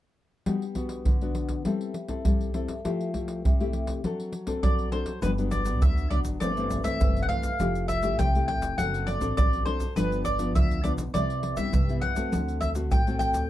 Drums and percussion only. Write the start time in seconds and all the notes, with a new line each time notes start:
0.46 pandeiro, surdo
0.62 pandeiro
0.75 pandeiro, surdo
0.89 pandeiro
1.05 pandeiro, surdo
1.21 pandeiro
1.35 pandeiro
1.49 pandeiro, surdo
1.65 pandeiro, surdo
1.81 pandeiro
1.94 pandeiro
2.08 pandeiro, surdo
2.25 pandeiro, surdo
2.41 pandeiro
2.54 pandeiro
2.68 pandeiro, surdo
2.85 pandeiro, surdo
3.01 pandeiro
3.14 pandeiro, surdo
3.28 pandeiro
3.45 pandeiro, surdo
3.60 pandeiro
3.73 pandeiro
3.87 pandeiro, surdo
4.04 pandeiro, surdo
4.20 pandeiro
4.33 pandeiro
4.47 pandeiro, surdo
4.63 pandeiro, surdo
4.79 pandeiro
4.92 pandeiro
5.06 pandeiro, surdo
5.22 pandeiro, shaker, surdo
5.38 pandeiro, shaker
5.52 pandeiro, shaker, surdo
5.65 pandeiro, shaker
5.82 pandeiro, shaker, surdo
5.98 pandeiro, shaker
6.11 pandeiro
6.25 pandeiro, shaker, surdo
6.41 pandeiro, shaker, surdo
6.57 pandeiro, shaker
6.70 pandeiro, shaker, surdo
6.85 pandeiro, shaker, surdo
7.01 pandeiro, shaker, surdo
7.17 pandeiro, shaker
7.29 pandeiro
7.43 pandeiro, shaker, surdo
7.60 pandeiro, shaker, surdo
7.75 pandeiro, shaker
7.89 pandeiro, shaker, surdo
8.03 pandeiro, shaker
8.19 pandeiro, shaker, surdo
8.35 pandeiro, shaker
8.48 pandeiro
8.62 pandeiro, shaker, surdo
8.79 pandeiro, shaker, surdo
8.94 pandeiro, shaker
9.08 pandeiro
9.21 pandeiro, shaker, surdo
9.38 pandeiro, shaker, surdo
9.53 pandeiro, shaker
9.66 pandeiro
9.80 pandeiro, shaker, surdo
9.97 pandeiro, shaker, surdo
10.12 pandeiro, shaker
10.25 pandeiro, shaker, surdo
10.39 pandeiro, shaker
10.56 pandeiro, shaker, surdo
10.71 pandeiro, shaker
10.84 pandeiro, shaker
10.98 pandeiro, shaker, surdo
11.15 pandeiro, shaker, surdo
11.30 pandeiro, shaker
11.43 pandeiro
11.57 pandeiro, shaker, surdo
11.73 pandeiro, shaker, surdo
11.89 pandeiro, shaker
12.02 pandeiro
12.16 pandeiro, shaker, surdo
12.33 pandeiro, shaker, surdo
12.49 pandeiro, shaker
12.62 pandeiro, shaker, surdo
12.75 pandeiro, shaker
12.92 pandeiro, shaker, surdo
13.07 pandeiro, shaker
13.20 pandeiro, shaker
13.34 pandeiro, shaker, surdo